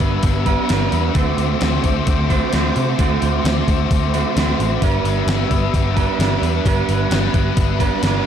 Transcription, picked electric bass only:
0.00 G1
0.23 G1
0.70 G1
0.92 E2
1.15 D2
1.38 D2
1.62 D2
1.84 D2
2.07 D2
2.53 D2
2.76 C3
2.99 D2
3.22 D2
3.44 D2
3.68 D2
3.91 D2
4.37 D2
4.60 A1
4.82 G1
5.04 G1
5.27 G1
5.51 G1
5.74 G1
6.19 G1
6.42 E2
6.65 G1
6.89 G1
7.11 G1
7.34 G1
7.57 G1
8.03 G1

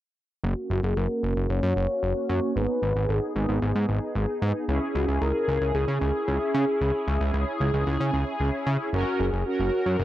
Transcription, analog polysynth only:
0.44 A#3 C#4 F#4
2.56 B3 D#4 G#4
4.68 C#4 E4 G#4
8.93 C#4 F#4 A#4
9.46 C#4 F#4 A#4

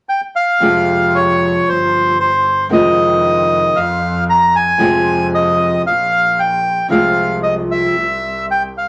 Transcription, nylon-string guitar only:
0.60 C3 F3 G#3 G4
2.69 C3 D#3 G#3 C4 F4
4.78 C3 F3 G#3 C4 F4
6.88 C3 F3 G#3 C4 F4

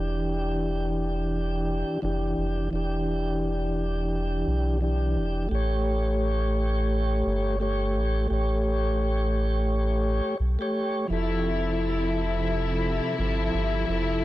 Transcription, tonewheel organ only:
Already playing: E3 D4 G4
2.02 E3 D4 G4
2.71 E3 D4
2.75 G4
4.81 E3 D4 G4
5.49 A3 G4
5.55 C#5
7.60 A3 G4 C#5
8.28 A3 G4
8.33 C#5
10.59 A3 G4 C#5
11.08 F3 E4
11.13 A4
13.18 F3 E4 A4
13.86 F3 E4
13.92 A4

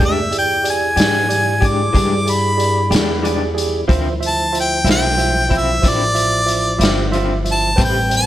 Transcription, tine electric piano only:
Already playing: G4
0.00 G#4 D5
0.31 G4 G#4 D5
0.64 G4 G#4 D5
0.97 G4 G#4 D5
1.29 G4 G#4 D5
1.61 G4 G#4 D5
1.94 G4 G#4 D5
2.25 G4 G#4 D5
2.57 G4 G#4 D5
2.90 G4 G#4 D5
3.23 G4 G#4 D5
3.55 G4 G#4 D5
3.88 F4 C5 E5
4.20 F4 C5 E5
4.53 F4 C5 E5
4.84 F4 C5 E5
5.17 F4 C5 E5
5.49 F4 C5 E5
5.82 F4 C5 E5
6.15 F4 C5 E5
6.46 F4 C5 E5
6.78 F4 C5 E5
7.11 F4 C5 E5
7.44 F4 C5 E5
7.76 B4 C5 G5
8.10 B4 C5 G5

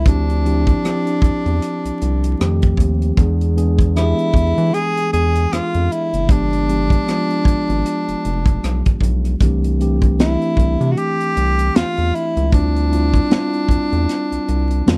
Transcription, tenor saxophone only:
0.08 D4
3.97 E4
4.74 G#4
5.13 G#4
5.54 F4
5.92 E4
6.31 D4
10.21 E4
10.92 F#4
10.98 G4
11.76 F4
12.15 E4
12.54 D4

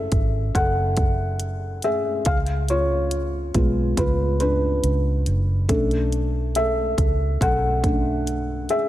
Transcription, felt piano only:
Already playing: A3 C#4 E4 G#4 A4 E5
0.55 A4 F#5
1.84 G#4 E5
2.27 G#4 F5
2.70 F4 C#5
3.54 G#3 B3 F4
3.98 F4 B4
4.40 D4 B4
5.69 A3 C#4 D4 A4
6.56 A4 E5
7.42 A4 F#5
7.84 A3 C#4 D4
8.70 G#4 E5

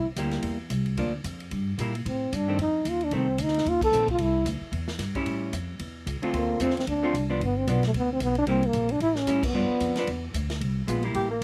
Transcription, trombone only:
2.08 C4
2.35 D4
2.62 D#4
2.90 F4
3.04 D4
3.16 C4
3.43 D#4
3.69 F4
3.84 A4
4.11 F4
4.22 E4
6.36 A#3
6.62 C4
6.77 C4
6.88 D4
7.44 B3
7.59 C4
7.70 B3
7.87 A3
7.97 B3
8.13 C4
8.23 B3
8.38 D4
8.48 C4
8.66 A#3
8.92 D4
9.02 E4
9.18 C#4
9.46 B3

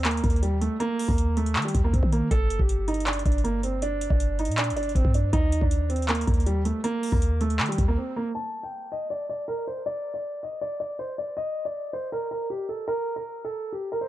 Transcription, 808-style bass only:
Already playing: D#2
0.24 D#2
1.09 D#2
1.56 D#3
1.75 D#2
1.93 D#2
2.03 D#3
2.31 G1
2.60 G1
3.26 G1
4.10 G1
4.48 A#2
4.72 G1
4.95 G1
5.05 G2
5.33 D#2
5.61 D#2
6.27 D#2
7.12 D#2
7.59 D#3
7.78 D#2

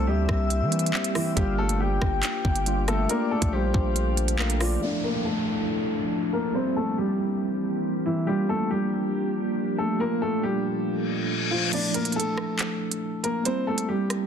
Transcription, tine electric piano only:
Already playing: G3 A#3 C4 E4
0.71 G3 A#3 C4 E4
1.35 G3 A#3 D4 F4
2.66 G3 A#3 D4 F4
3.08 A3 A#3 D4 F4
4.38 A3 A#3 D4 F4
4.80 F3 A3 D4 E4
6.53 G3 A#3 C4 E4
8.26 G3 A#3 D4 F4
9.98 A3 A#3 D4 F4
11.71 F3 A3 D4 E4
13.43 G3 A#3 C4 E4

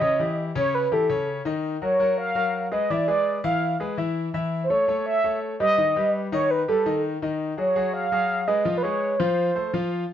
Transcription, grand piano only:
0.01 C#3 C#4 C#5
0.19 E3 E4 G4
0.55 C#3 C#4 C#5
0.92 E3 E4 G4
1.09 C#3 C#4 C#5
1.45 D#3 D#4 D#5
1.82 F#3 F#4 A#4
1.99 F#3 F#4 A#4
2.35 F#3 F#4 A#4
2.71 G#3 G#4 B4
2.90 E3 E4 E5
3.08 G#3 G#4 B4
3.44 E3 E4 F5
3.80 G#3 G#4 B4
3.97 E3 E4 E5
4.34 E3 E4 E5
4.70 A3 A4 C#5
4.88 A3 A4 C#5
5.24 A3 A4 C#5
5.60 G3 G4 B4
5.78 D#3 D#4 D#5
5.96 G3 G4 B4
6.32 D#3 D#4 D#5
6.68 G3 G4 B4
6.86 D#3 D#4 D#5
7.22 D#3 D#4 D#5
7.57 F#3 F#4 G#4
7.76 F#3 F#4 G#4
8.12 F#3 F#4 G#4
8.48 G#3 G#4 B4
8.65 F3 F4 F5
8.84 G#3 G#4 B4
9.20 F3 F4 F5
9.55 A3 A4 C5
9.73 F3 F4 F5

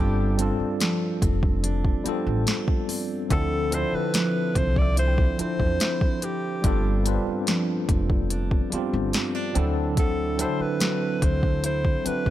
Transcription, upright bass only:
Already playing: G1
0.60 muted upright bass stroke
1.22 F1
2.06 muted upright bass stroke
2.27 A1
3.31 D2
3.93 muted upright bass stroke
4.56 C2
5.39 muted upright bass stroke
5.60 E2
6.64 G1
7.27 muted upright bass stroke
7.89 F1
8.73 muted upright bass stroke
8.93 G1
9.56 D2
10.60 muted upright bass stroke
11.22 D2
12.06 muted upright bass stroke
12.26 C2

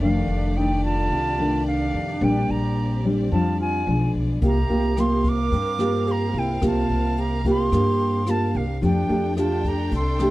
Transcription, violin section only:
Already playing: A3 G4 D5
0.00 D4
2.19 C4
3.85 B3 G#4
4.42 C4 A#4 F5
8.82 D4 A4 G5

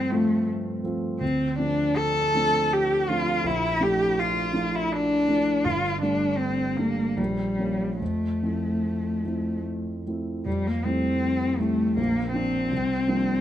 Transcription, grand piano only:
Already playing: G2 F3 A3 C4 F4
0.12 F3 A3 C4 F4
0.83 F3 A3 C4 F4
1.20 D2
1.58 F3 A3 C4 D4
2.34 F3 A3 C4 D4
3.09 F3 A3 C4 D4
3.44 A#1
3.80 F3 A3 D4 E4
4.53 F3 A3 D4 E4
5.28 F3 A3 D4 E4
5.65 G1
6.01 G3 A3 D4
6.78 G3 A3 D4
7.18 A#1
7.59 F3 A#3 C#4
8.01 F2
8.43 F3 A3 C4 E4
9.25 F3 A3 C4 E4
10.07 F3 A3 C4 E4
10.45 F2
10.85 G3 A3 C4 E4
11.60 G3 A3 C4 E4
11.97 A#1
12.34 F3 A#3 C4 D4
12.71 C2
13.07 F3 G3 A#3 D4

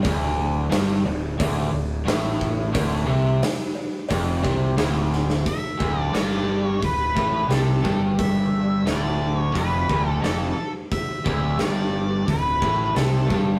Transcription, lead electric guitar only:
5.48 E5
6.00 D5
6.16 D5
6.65 C#5
6.84 B4
7.53 A4
8.19 E5
8.88 D5
9.37 C#5
9.57 B4
10.09 A4
10.23 A4
10.92 E5
11.61 D5
12.30 B4
12.96 A4

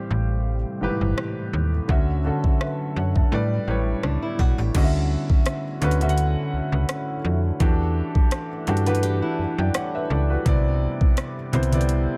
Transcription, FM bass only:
0.11 A1
0.82 G1
1.01 G1
1.53 D#2
1.89 D2
2.44 F#2
2.96 F#2
3.32 A2
3.68 A1
4.03 C#2
4.39 B1
4.58 A1
4.75 D2
5.30 D2
5.82 D2
6.53 C#2
6.72 C#2
7.25 F2
7.60 E2
8.15 G2
8.68 G2
9.39 F#2
9.58 F#2
10.10 C#2
10.46 C2
11.01 C2
11.53 C2

